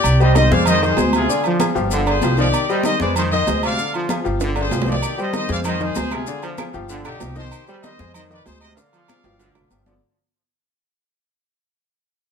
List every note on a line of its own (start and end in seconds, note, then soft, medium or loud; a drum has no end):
0.00 0.20 G4 medium
0.00 0.19 D5 loud
0.00 low agogo loud
0.04 0.48 C2 loud
0.04 high conga soft
0.04 maracas medium
0.20 0.33 G3 medium
0.20 0.45 G3 medium
0.20 0.33 G4 medium
0.20 0.33 C5 medium
0.20 0.37 C5 medium
0.20 0.34 D#5 medium
0.20 high conga soft
0.20 maracas soft
0.35 0.49 D#3 medium
0.35 0.49 D#4 medium
0.35 0.52 C5 medium
0.35 0.50 D#5 loud
0.35 0.50 D#5 medium
0.35 high conga loud
0.35 low timbale medium
0.35 low agogo medium
0.35 maracas medium
0.51 0.95 F2 loud
0.51 0.77 G#3 medium
0.51 0.77 G#4 medium
0.51 0.77 C5 medium
0.51 0.69 D5 medium
0.51 0.67 F5 loud
0.51 high conga loud
0.51 maracas soft
0.66 0.93 D#3 medium
0.66 0.81 C5 medium
0.66 0.81 D#5 loud
0.66 high conga soft
0.66 low conga medium
0.66 low agogo loud
0.66 maracas medium
0.82 0.95 D#3 loud
0.82 0.95 D#4 loud
0.82 1.13 G#4 medium
0.82 1.14 C5 loud
0.82 0.96 D#5 loud
0.82 high conga soft
0.82 maracas soft
0.97 1.25 D2 loud
0.97 1.24 G#3 medium
0.97 1.24 G#4 medium
0.97 1.24 C5 medium
0.97 high conga medium
0.97 low timbale medium
0.97 low agogo medium
0.97 maracas medium
1.13 1.31 C3 medium
1.13 1.44 F4 medium
1.13 1.43 G#4 medium
1.13 high conga medium
1.13 low agogo loud
1.13 maracas soft
1.29 1.55 D3 medium
1.29 1.55 D4 medium
1.29 1.55 D5 medium
1.29 maracas medium
1.44 1.70 F3 medium
1.44 high conga soft
1.44 low agogo medium
1.44 maracas soft
1.60 1.73 F3 medium
1.60 1.73 F4 medium
1.60 1.73 G#4 medium
1.60 high conga loud
1.60 low timbale medium
1.60 low agogo loud
1.60 maracas medium
1.75 2.19 G1 loud
1.75 2.01 F3 medium
1.75 2.01 F4 medium
1.75 2.01 G4 medium
1.75 maracas soft
1.91 2.16 D3 loud
1.91 high conga soft
1.91 low agogo medium
1.91 maracas medium
2.06 2.19 D3 loud
2.06 2.20 D4 loud
2.06 2.37 G#4 medium
2.06 2.36 C5 medium
2.06 2.20 D5 loud
2.06 high conga soft
2.06 low agogo loud
2.06 maracas soft
2.21 2.50 C2 loud
2.21 2.35 F3 medium
2.21 2.35 F4 medium
2.21 2.36 G4 medium
2.21 high conga loud
2.21 low timbale medium
2.21 low agogo medium
2.21 maracas medium
2.37 2.64 D#3 loud
2.37 2.47 F3 medium
2.37 2.64 D#4 loud
2.37 2.68 G4 medium
2.37 2.64 D5 medium
2.37 2.68 D5 loud
2.37 high conga medium
2.37 maracas soft
2.53 high conga soft
2.53 low agogo loud
2.53 maracas medium
2.69 2.94 G3 medium
2.69 2.82 G3 medium
2.69 2.82 G4 medium
2.69 2.83 C5 medium
2.69 2.86 C5 medium
2.69 2.85 D#5 medium
2.69 high conga soft
2.69 maracas soft
2.84 2.98 D#3 medium
2.84 2.98 D#4 loud
2.84 3.01 C5 medium
2.84 2.98 D#5 medium
2.84 3.00 D#5 loud
2.84 high conga loud
2.84 low timbale medium
2.84 low agogo medium
2.84 maracas medium
2.99 3.44 F2 loud
2.99 3.27 G#3 medium
2.99 3.27 G#4 medium
2.99 3.15 B4 medium
2.99 3.27 C5 medium
2.99 3.14 D5 loud
2.99 high conga loud
2.99 maracas soft
3.16 3.41 D#3 medium
3.16 3.24 G#4 medium
3.16 3.23 C5 loud
3.16 high conga soft
3.16 low conga medium
3.16 low agogo loud
3.16 maracas medium
3.31 3.45 D#3 loud
3.31 3.45 D#4 loud
3.31 3.61 C5 medium
3.31 3.61 D#5 loud
3.31 3.46 D#5 loud
3.31 high conga soft
3.31 low conga medium
3.31 maracas soft
3.47 3.75 D2 loud
3.47 3.73 G#3 medium
3.47 3.74 G#4 medium
3.47 3.74 C5 medium
3.47 high conga medium
3.47 low timbale medium
3.47 low agogo medium
3.47 maracas medium
3.62 3.79 C3 medium
3.62 3.93 D5 medium
3.62 3.92 F5 loud
3.62 low agogo loud
3.62 maracas soft
3.78 4.04 D3 medium
3.78 4.05 D4 medium
3.78 4.05 D5 medium
3.78 high conga soft
3.78 maracas medium
3.94 4.19 F3 medium
3.94 high conga soft
3.94 low agogo loud
3.94 maracas soft
4.09 4.22 F3 medium
4.09 4.23 F4 medium
4.09 4.23 G#4 medium
4.09 high conga loud
4.09 low timbale medium
4.09 low agogo loud
4.09 maracas medium
4.24 4.69 G1 loud
4.24 4.50 F3 medium
4.24 4.51 F4 medium
4.24 4.51 G4 medium
4.24 high conga soft
4.24 maracas soft
4.40 4.66 D3 medium
4.40 high conga soft
4.40 high timbale medium
4.40 low agogo medium
4.40 maracas medium
4.56 4.69 D3 loud
4.56 4.69 D4 medium
4.56 4.87 G#4 medium
4.56 4.69 D5 loud
4.56 high conga soft
4.56 low agogo loud
4.56 maracas soft
4.60 4.87 C5 loud
4.60 high timbale medium
4.71 4.99 C2 loud
4.71 4.84 F3 medium
4.71 4.85 F4 medium
4.71 4.85 G4 medium
4.71 high conga medium
4.71 low timbale medium
4.71 low agogo medium
4.71 maracas medium
4.82 low timbale loud
4.86 5.13 D#3 loud
4.86 4.96 F3 medium
4.86 5.13 D#4 loud
4.86 5.18 G4 medium
4.86 5.13 D5 loud
4.86 5.18 D5 loud
4.86 high conga medium
4.86 maracas soft
4.92 low timbale medium
5.02 high conga soft
5.02 low agogo loud
5.02 claves medium
5.02 maracas medium
5.18 5.31 G3 medium
5.18 5.44 G3 medium
5.18 5.31 G4 medium
5.18 5.31 C5 medium
5.18 5.34 C5 medium
5.18 5.34 D#5 medium
5.18 high conga soft
5.18 maracas soft
5.33 5.46 D#3 medium
5.33 5.46 D#4 medium
5.33 5.50 C5 medium
5.33 5.47 D#5 loud
5.33 5.50 D#5 loud
5.33 high conga loud
5.33 low timbale medium
5.33 low agogo loud
5.33 maracas medium
5.49 5.93 F2 loud
5.49 5.75 G#3 medium
5.49 5.75 G#4 medium
5.49 5.75 C5 loud
5.49 5.58 D5 medium
5.49 5.58 F5 loud
5.49 high conga loud
5.49 maracas soft
5.64 5.89 D#3 medium
5.64 5.80 C5 medium
5.64 5.80 D#5 loud
5.64 high conga soft
5.64 low conga medium
5.64 low agogo loud
5.64 claves medium
5.64 maracas medium
5.80 5.93 D#3 loud
5.80 5.93 D#4 loud
5.80 6.11 G#4 medium
5.80 6.12 C5 loud
5.80 5.94 D#5 loud
5.80 high conga soft
5.80 low conga medium
5.80 maracas soft
5.95 6.24 D2 loud
5.95 6.22 G#3 medium
5.95 6.22 G#4 medium
5.95 6.22 C5 medium
5.95 high conga medium
5.95 low timbale medium
5.95 low agogo medium
5.95 maracas medium
6.11 6.28 C3 medium
6.11 6.44 F4 medium
6.11 6.44 G#4 medium
6.11 high conga medium
6.11 low agogo loud
6.11 claves medium
6.11 maracas soft
6.27 6.53 D3 medium
6.27 6.53 D4 medium
6.27 6.53 D5 medium
6.27 maracas medium
6.43 6.68 F3 medium
6.43 high conga soft
6.43 low agogo medium
6.43 maracas soft
6.58 6.71 F3 medium
6.58 6.72 F4 medium
6.58 6.72 G#4 medium
6.58 high conga loud
6.58 low timbale medium
6.58 low agogo loud
6.58 claves medium
6.58 maracas medium
6.74 7.03 G1 loud
6.74 7.00 F3 medium
6.74 7.00 F4 medium
6.74 7.00 G4 loud
6.74 maracas soft
6.89 7.14 D3 medium
6.89 high conga soft
6.89 low agogo medium
6.89 maracas medium
7.05 7.20 B1 medium
7.05 7.18 D3 loud
7.05 7.18 D4 medium
7.05 7.35 D#4 medium
7.05 7.35 G4 medium
7.05 7.19 D5 loud
7.05 high conga soft
7.05 low agogo loud
7.05 claves medium
7.05 maracas soft
7.20 7.49 C2 loud
7.20 7.33 F3 medium
7.20 7.34 F4 medium
7.20 7.34 G4 medium
7.20 high conga medium
7.20 low timbale medium
7.20 low agogo medium
7.20 maracas medium
7.36 7.62 D#3 loud
7.36 7.45 F3 medium
7.36 7.62 D#4 loud
7.36 7.67 G4 medium
7.36 7.66 C5 loud
7.36 7.62 D#5 loud
7.36 high conga medium
7.36 maracas soft
7.52 low agogo loud
7.52 claves medium
7.52 maracas medium
7.68 7.81 G3 medium
7.68 7.93 G3 medium
7.68 7.81 G4 medium
7.68 7.77 G#4 medium
7.68 7.75 C5 medium
7.68 7.81 C5 medium
7.68 high conga soft
7.68 maracas soft
7.83 7.96 D#3 medium
7.83 7.96 D#4 medium
7.83 8.13 C5 medium
7.83 8.12 D#5 loud
7.83 7.97 D#5 loud
7.83 high conga loud
7.83 low timbale medium
7.83 low agogo medium
7.83 maracas medium
7.99 8.43 F2 loud
7.99 8.25 G#3 medium
7.99 8.25 G#4 medium
7.99 8.25 C5 loud
7.99 high conga loud
7.99 maracas soft
8.14 8.40 D#3 medium
8.14 8.24 C5 medium
8.14 8.22 D#5 loud
8.14 high conga soft
8.14 low conga medium
8.14 low agogo loud
8.14 claves medium
8.14 maracas medium
8.30 8.43 D#3 medium
8.30 8.43 D#4 loud
8.30 8.45 D5 loud
8.30 8.43 D#5 loud
8.30 high conga soft
8.30 maracas soft
8.35 8.47 B4 medium
8.45 8.74 D2 loud
8.45 8.72 G#3 medium
8.45 8.72 G#4 medium
8.45 8.61 G#4 medium
8.45 8.60 C5 loud
8.45 8.72 C5 medium
8.45 high conga medium
8.45 low timbale medium
8.45 low agogo medium
8.45 maracas medium
8.61 8.78 C3 medium
8.61 8.70 C5 medium
8.61 8.68 D#5 loud
8.61 low agogo loud
8.61 claves medium
8.61 maracas soft
8.76 9.03 D3 medium
8.76 9.03 D4 medium
8.76 9.03 D5 medium
8.76 9.83 D5 medium
8.76 9.82 F5 loud
8.76 high timbale medium
8.76 maracas medium
8.93 9.18 F3 medium
8.93 high conga soft
8.93 low agogo medium
8.93 maracas soft
9.08 9.21 F3 medium
9.08 9.21 F4 medium
9.08 9.21 G#4 medium
9.08 high conga loud
9.08 low agogo loud
9.08 claves medium
9.08 maracas medium
9.24 9.53 G1 loud
9.24 9.49 F3 medium
9.24 9.49 F4 loud
9.24 9.50 G4 medium
9.24 low timbale loud
9.24 maracas soft
9.39 9.64 D3 medium
9.39 low timbale medium
9.39 low agogo medium
9.39 maracas medium
9.55 9.70 F1 medium
9.55 9.68 D3 medium
9.55 9.68 D4 medium
9.55 9.68 D5 medium
9.55 low timbale loud
9.55 low agogo loud
9.55 claves medium
9.55 maracas soft
9.70 9.98 G1 loud
9.70 9.84 F3 medium
9.70 9.84 F4 medium
9.70 9.84 G4 medium
9.70 high conga medium
9.70 low agogo medium
9.70 maracas medium
9.86 9.99 D3 loud
9.86 9.95 F3 medium
9.86 9.99 D4 loud
9.86 9.99 D5 loud
9.86 high conga medium
9.86 low timbale medium
9.86 maracas soft